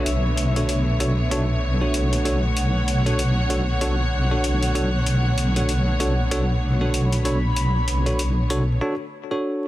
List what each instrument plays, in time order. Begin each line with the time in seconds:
Already playing: string section D3 A3 B3, analog synth pad D4 A4 B4 E5
0.06 wobble bass B1, string section C#5, closed hi-hat
0.37 closed hi-hat
0.56 tine electric piano D4 F#4 A4 C#5, closed hi-hat
0.69 closed hi-hat
1.00 tine electric piano D4 F#4 A4 C#5, closed hi-hat
1.31 tine electric piano D4 F#4 A4 C#5, closed hi-hat
1.81 tine electric piano D4 F#4 A4 C#5, analog synth pad F#5
1.94 closed hi-hat
2.13 closed hi-hat
2.25 tine electric piano D4 F#4 A4 C#5, closed hi-hat
2.57 closed hi-hat
2.88 closed hi-hat
3.06 tine electric piano D4 F#4 A4 C#5, closed hi-hat
3.19 closed hi-hat
3.50 tine electric piano D4 F#4 A4 C#5, closed hi-hat
3.81 tine electric piano D4 F#4 A4 C#5, closed hi-hat
4.31 tine electric piano D4 F#4 A4 C#5
4.44 closed hi-hat
4.62 closed hi-hat
4.75 tine electric piano D4 F#4 A4 C#5, closed hi-hat
5.06 closed hi-hat
5.38 closed hi-hat
5.56 tine electric piano D4 F#4 A4 C#5, closed hi-hat
5.69 closed hi-hat
6.00 tine electric piano D4 F#4 A4 C#5, closed hi-hat
6.31 tine electric piano D4 F#4 A4 C#5, closed hi-hat
6.81 tine electric piano D4 F#4 A4 C#5, analog synth pad B5
6.94 closed hi-hat
7.13 closed hi-hat
7.25 tine electric piano D4 F#4 A4 C#5, closed hi-hat
7.56 closed hi-hat
7.88 closed hi-hat
8.06 tine electric piano D4 F#4 A4 C#5, closed hi-hat
8.19 closed hi-hat
8.50 tine electric piano D4 F#4 A4 C#5, closed hi-hat
8.81 tine electric piano D4 F#4 A4 C#5
9.31 tine electric piano D4 F#4 A4 C#5